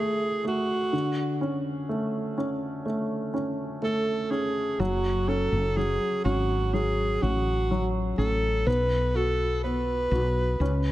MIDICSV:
0, 0, Header, 1, 4, 480
1, 0, Start_track
1, 0, Key_signature, 3, "minor"
1, 0, Tempo, 967742
1, 462, Time_signature, 4, 2, 24, 8
1, 5416, End_track
2, 0, Start_track
2, 0, Title_t, "Alto saxophone"
2, 0, Program_c, 0, 65
2, 0, Note_on_c, 0, 68, 82
2, 226, Note_off_c, 0, 68, 0
2, 235, Note_on_c, 0, 66, 76
2, 688, Note_off_c, 0, 66, 0
2, 1904, Note_on_c, 0, 69, 73
2, 2137, Note_on_c, 0, 68, 68
2, 2144, Note_off_c, 0, 69, 0
2, 2379, Note_on_c, 0, 66, 71
2, 2387, Note_off_c, 0, 68, 0
2, 2621, Note_on_c, 0, 69, 75
2, 2629, Note_off_c, 0, 66, 0
2, 2862, Note_on_c, 0, 68, 82
2, 2869, Note_off_c, 0, 69, 0
2, 3093, Note_off_c, 0, 68, 0
2, 3096, Note_on_c, 0, 66, 71
2, 3341, Note_on_c, 0, 68, 74
2, 3348, Note_off_c, 0, 66, 0
2, 3581, Note_on_c, 0, 66, 76
2, 3588, Note_off_c, 0, 68, 0
2, 3927, Note_off_c, 0, 66, 0
2, 4058, Note_on_c, 0, 69, 77
2, 4300, Note_on_c, 0, 71, 90
2, 4307, Note_off_c, 0, 69, 0
2, 4543, Note_on_c, 0, 69, 75
2, 4550, Note_off_c, 0, 71, 0
2, 4777, Note_off_c, 0, 69, 0
2, 4780, Note_on_c, 0, 71, 89
2, 5416, Note_off_c, 0, 71, 0
2, 5416, End_track
3, 0, Start_track
3, 0, Title_t, "Grand piano"
3, 0, Program_c, 1, 0
3, 0, Control_c, 1, 64, 127
3, 0, Note_on_c, 1, 57, 42
3, 213, Note_off_c, 1, 57, 0
3, 220, Note_on_c, 1, 57, 41
3, 454, Note_off_c, 1, 57, 0
3, 459, Note_on_c, 1, 50, 53
3, 469, Control_c, 1, 64, 0
3, 546, Control_c, 1, 64, 127
3, 700, Note_on_c, 1, 61, 45
3, 938, Note_on_c, 1, 57, 43
3, 1171, Note_off_c, 1, 61, 0
3, 1179, Note_on_c, 1, 61, 45
3, 1409, Note_off_c, 1, 57, 0
3, 1416, Note_on_c, 1, 57, 44
3, 1648, Note_off_c, 1, 61, 0
3, 1655, Note_on_c, 1, 61, 43
3, 1889, Note_off_c, 1, 57, 0
3, 1896, Note_on_c, 1, 57, 44
3, 2129, Note_off_c, 1, 61, 0
3, 2136, Note_on_c, 1, 61, 44
3, 2361, Note_off_c, 1, 50, 0
3, 2364, Note_off_c, 1, 57, 0
3, 2372, Note_off_c, 1, 61, 0
3, 2379, Note_on_c, 1, 54, 56
3, 2387, Control_c, 1, 64, 0
3, 2487, Control_c, 1, 64, 127
3, 2618, Note_on_c, 1, 61, 44
3, 2852, Note_off_c, 1, 54, 0
3, 2860, Note_on_c, 1, 54, 46
3, 3092, Note_off_c, 1, 61, 0
3, 3100, Note_on_c, 1, 61, 46
3, 3332, Note_off_c, 1, 54, 0
3, 3340, Note_on_c, 1, 54, 45
3, 3572, Note_off_c, 1, 61, 0
3, 3580, Note_on_c, 1, 61, 43
3, 3816, Note_off_c, 1, 54, 0
3, 3824, Note_on_c, 1, 54, 47
3, 4050, Note_off_c, 1, 61, 0
3, 4058, Note_on_c, 1, 61, 40
3, 4288, Note_off_c, 1, 54, 0
3, 4293, Note_off_c, 1, 61, 0
3, 4298, Note_on_c, 1, 59, 55
3, 4308, Control_c, 1, 64, 0
3, 4399, Control_c, 1, 64, 127
3, 4538, Note_on_c, 1, 66, 45
3, 4774, Note_off_c, 1, 59, 0
3, 4782, Note_on_c, 1, 59, 44
3, 5014, Note_off_c, 1, 66, 0
3, 5021, Note_on_c, 1, 66, 46
3, 5247, Note_off_c, 1, 59, 0
3, 5254, Note_off_c, 1, 66, 0
3, 5264, Note_on_c, 1, 61, 49
3, 5268, Control_c, 1, 64, 0
3, 5361, Control_c, 1, 64, 127
3, 5416, Note_off_c, 1, 61, 0
3, 5416, End_track
4, 0, Start_track
4, 0, Title_t, "Fretless electric bass"
4, 0, Program_c, 2, 35
4, 2378, Note_on_c, 2, 30, 79
4, 2720, Note_off_c, 2, 30, 0
4, 2738, Note_on_c, 2, 30, 64
4, 2963, Note_off_c, 2, 30, 0
4, 3100, Note_on_c, 2, 32, 80
4, 3561, Note_off_c, 2, 32, 0
4, 3584, Note_on_c, 2, 33, 72
4, 4043, Note_off_c, 2, 33, 0
4, 4057, Note_on_c, 2, 33, 68
4, 4282, Note_off_c, 2, 33, 0
4, 4298, Note_on_c, 2, 35, 91
4, 5000, Note_off_c, 2, 35, 0
4, 5016, Note_on_c, 2, 35, 76
4, 5242, Note_off_c, 2, 35, 0
4, 5257, Note_on_c, 2, 37, 76
4, 5416, Note_off_c, 2, 37, 0
4, 5416, End_track
0, 0, End_of_file